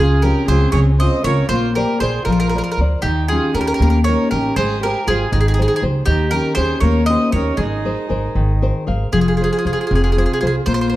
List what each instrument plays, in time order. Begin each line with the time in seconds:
Already playing: upright bass C#2, violin F4, mandolin G#4
0.00 nylon-string guitar C#3
0.22 nylon-string guitar C4 C#4 F4, violin G4, mandolin A#4
0.47 upright bass C#2, nylon-string guitar C4 C#4 F4, violin G#4, mandolin C5
0.72 upright bass C#2, nylon-string guitar G#3, violin G#4, mandolin C#5
0.99 nylon-string guitar C4 C#4 F4, violin C5, mandolin D#5
1.24 upright bass C#2, nylon-string guitar C4 C#4 F4, violin A#4, mandolin C#5
1.49 upright bass A#1, nylon-string guitar A#3, violin F4, mandolin C5
1.75 violin G4, mandolin A#4, nylon-string guitar A#4 C5 D5
2.00 upright bass A#1, violin G#4, nylon-string guitar A#4 C5 D5, mandolin C5
2.25 upright bass A#1, nylon-string guitar F3, violin F4, mandolin A#4
2.32 mandolin A#4
2.40 mandolin A#4
2.49 mandolin A#4
2.55 nylon-string guitar A#4 C5 D5, mandolin A#4
2.64 mandolin A#4
2.71 mandolin A#4
2.78 upright bass D2, nylon-string guitar A#4 C5 D5
3.02 upright bass D#2, nylon-string guitar D#3, violin D#4, mandolin G4
3.28 nylon-string guitar C#4 G4, violin F4, mandolin G#4
3.32 nylon-string guitar D#4
3.54 upright bass D#2, nylon-string guitar C#4 D#4 G4, violin G4, mandolin A#4
3.61 mandolin A#4
3.67 mandolin A#4
3.74 mandolin A#4
3.80 upright bass D#2, nylon-string guitar A#3, mandolin A#4
3.90 mandolin A#4
4.04 nylon-string guitar C#4, violin A#4, mandolin C#5
4.09 nylon-string guitar D#4 G4
4.31 upright bass A1, nylon-string guitar C#4 D#4 G4, violin G4, mandolin A#4
4.56 upright bass G#1, nylon-string guitar G#3, violin G#4, mandolin C5
4.82 violin G4, nylon-string guitar G4 G#4 C5, mandolin A#4
5.07 upright bass G#1, violin F4, nylon-string guitar G4 G#4 C5, mandolin G#4
5.31 upright bass G#1, nylon-string guitar D#3, violin D#4, mandolin G#4
5.41 mandolin G#4
5.48 mandolin G#4
5.54 mandolin G#4
5.58 nylon-string guitar G4 G#4 C5, mandolin G#4
5.68 mandolin G#4
5.76 mandolin G#4
5.82 upright bass C#2, nylon-string guitar G4 G#4 C5
6.06 upright bass D#2, nylon-string guitar D#3, violin D#4, mandolin G4
6.31 nylon-string guitar C#4 D#4 G4, violin G4, mandolin A#4
6.55 upright bass D#2, nylon-string guitar C#4 D#4 G4, violin G#4, mandolin C5
6.80 upright bass D#2, nylon-string guitar A#3, violin A#4, mandolin C#5
7.06 nylon-string guitar C#4 D#4, violin C5, mandolin D#5
7.10 nylon-string guitar G4
7.32 upright bass D#2, nylon-string guitar C#4 D#4 G4, violin A#4, mandolin C#5
7.57 upright bass G#1, nylon-string guitar G#3, violin D#4, mandolin G#4
7.85 nylon-string guitar G#4 A#4 C5
8.09 upright bass G#1, nylon-string guitar G#4 A#4 C5
8.35 upright bass G#1, nylon-string guitar D#3
8.62 nylon-string guitar G#4 A#4 C5
8.87 upright bass G#1, nylon-string guitar G#4 A#4 C5 F5
9.13 upright bass F1, nylon-string guitar F3, violin F4, mandolin G#4
9.21 mandolin G#4
9.28 mandolin G#4
9.37 nylon-string guitar F4, mandolin G#4
9.41 nylon-string guitar G#4 C5, mandolin G#4
9.53 mandolin G#4
9.59 mandolin G#4
9.65 upright bass F1, nylon-string guitar F4 G#4 C5, mandolin G#4
9.73 mandolin G#4
9.81 mandolin G#4
9.87 mandolin G#4
9.91 upright bass F1, nylon-string guitar C3
9.95 mandolin G#4
10.04 mandolin G#4
10.12 mandolin G#4
10.17 nylon-string guitar F4 G#4 C5, mandolin G#4
10.26 mandolin G#4
10.33 mandolin G#4
10.41 upright bass C2, nylon-string guitar F4 G#4 C5, mandolin G#4
10.47 mandolin G#4
10.66 upright bass A#1, nylon-string guitar A#3, violin F4, mandolin C5
10.74 mandolin C5
10.81 mandolin C5
10.90 mandolin C5, nylon-string guitar C5